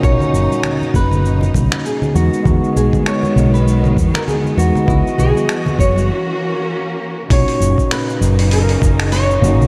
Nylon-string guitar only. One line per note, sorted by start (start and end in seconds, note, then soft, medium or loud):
0.04 0.95 C#5 loud
0.96 1.89 B4 loud
1.86 2.13 G#4 medium
2.16 2.72 F#4 loud
2.77 3.07 G#4 medium
3.07 3.54 C#5 medium
3.54 4.14 B4 medium
4.14 4.19 A#4 medium
4.28 4.59 G#4 medium
4.58 4.89 F#4 medium
4.88 4.96 E4 medium
5.19 5.75 G#4 medium
5.79 6.07 C#5 medium
7.32 7.88 C#5 medium
7.92 8.53 B4 loud
8.53 9.00 A#4 medium
9.00 9.12 G#4 medium
9.12 9.67 C#5 loud